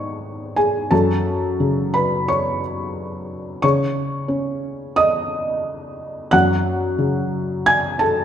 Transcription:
Already playing: G#2 D#3 C#5 D#5 C#6 D#6
0.56 G#4 G#5
0.91 F#2 A4 A5
1.60 C#3
1.94 B4 B5
2.28 C#5 C#6
3.62 C#3 C#5 C#6
4.28 C#4
4.96 D#5 D#6
6.31 F#2 F#5 F#6
6.98 C#3
7.66 G#5 G#6
7.99 A4 A5

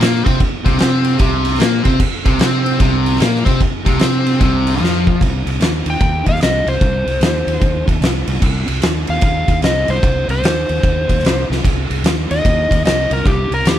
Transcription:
0.00 A#2 A#3, snare, ride
0.16 snare
0.24 C3 C4, kick, ride
0.40 kick, ride
0.65 C2 C3, kick, ride
0.78 C3 C4, snare, ride
1.05 ride
1.18 C2 C3, kick, ride
1.45 ride
1.55 snare
1.59 A#2 A#3, snare, ride
1.84 C3 C4, kick, ride
2.00 kick, crash
2.25 C2 C3, kick, ride
2.39 C3 C4, snare, ride
2.66 ride
2.80 C2 C3, kick, ride
3.06 ride
3.16 snare
3.20 A#2 A#3, snare, ride
3.35 snare
3.45 C3 C4, kick, ride
3.60 kick, ride
3.86 C2 C3, kick, ride
3.99 C3 C4, snare, ride
4.26 ride
4.40 C2 C3, kick, ride
4.67 ride
4.76 snare
4.81 F2 F3, snare
5.07 kick
5.21 C2, kick, ride
5.46 C2, ride
5.60 D#2, snare, ride
5.86 D#2, ride
5.90 G5
6.00 D#2, kick, ride
6.26 D#2 F5, kick, ride
6.36 snare
6.41 C2 D#5, snare, ride
6.66 C2 C5, ride
6.81 C2, kick, ride
7.06 C2, ride
7.21 D#2, snare, ride
7.47 D#2, ride
7.62 D#2, kick, ride
7.88 D#2, kick, ride
8.01 C2, snare, ride
8.27 C2, ride
8.42 C2, kick, crash
8.68 C2, ride
8.82 D#2, snare, ride
9.07 D#2 F5, ride
9.21 D#2, kick, ride
9.48 D#2, kick, ride
9.62 C2 D#5, snare, ride
9.88 C2 C5, ride
10.03 C2, kick, ride
10.28 C2 C5, ride
10.42 D#2, snare, ride
10.69 D#2, ride
10.83 D#2, kick, ride
11.09 D#2, kick, ride
11.19 snare
11.23 C2, snare, ride
11.50 C2, snare
11.64 C2, kick, ride, crash
11.90 C2, ride
12.04 D#2, snare, ride
12.31 D#2 D#5, ride
12.44 D#2, kick, ride
12.71 D#2, kick, ride
12.85 C2 D#5, snare, ride
13.11 C2 A#4, ride
13.26 C2 G4, kick, ride
13.50 C2 A#4, ride
13.65 D#2 G4, snare, ride

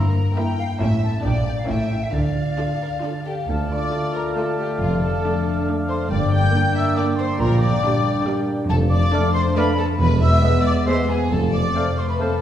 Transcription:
Already playing: G2 A#3 E4 A#4 E5 A#5
0.15 A#4
0.37 A#3 E4 E5 G5
0.58 A#4 F5
0.80 A1 A2 C#4 E4 E5 G5
1.02 E4 E5 A5
1.23 A#1 A#2 D4 A#4 D5 G5
1.46 A#4 D5 G5
1.57 F5
1.68 A1 A2 C#4 E4 A#4 E5 G5
1.91 A#4 C#5
2.02 E5
2.13 D2 D3 D5 F5
2.36 F4
2.58 D4 F4 A4 D5
2.81 A#4 F5
3.04 D4 F4 A4
3.25 G4 A4 F5 G5
3.48 D2 D3 A3 F4 A4 D5 F5 A5
3.70 A3 D5 D6
3.92 A3 F4
4.13 A4 A#4 A#5
4.36 A3 F4 A4 D5 A5
4.58 G4 G5
4.80 F1 F2 D4 F4 F5
5.01 F3 A4 A5
5.23 A3 D4
5.45 A4
5.67 A3 D4 D5
5.89 A4 C5 C6
6.10 G1 G2 A#3 D5 G5 D6
6.32 D3 G5 G6
6.53 A#3 D4
6.74 A#4 E5 E6
6.96 A#3 D4 D5 D6
7.18 A#4 C5 C6
7.40 A#1 A#2 G3 D4 A#4 A#5
7.60 A#3 D5 D6
7.83 G3 D4
8.05 G4
8.26 G3 D4
8.48 G4
8.69 F1 F2 A3 A4 A5
8.90 F3 D5 D6
9.13 A3 D4 D5 F5
9.33 A4 C5 C6
9.56 A3 D4 B4 D5 F5 B5
9.78 A4 A5
10.00 E1 E2 G#3 B3 B4 B5
10.22 B2 E5 E6
10.43 G#3 B3 B4 E5
10.64 G#4 D5 D6
10.87 G#3 B3 B4 C5 E5 C6
11.08 G#4 G#5
11.30 F1 F2 A3 C4 A4 A5
11.51 C3 D5 D6
11.75 A3 C4 C5 F5
11.97 A4 C5 C6
12.07 B4 B5
12.19 A3 C4 A4 C5 F5 A5

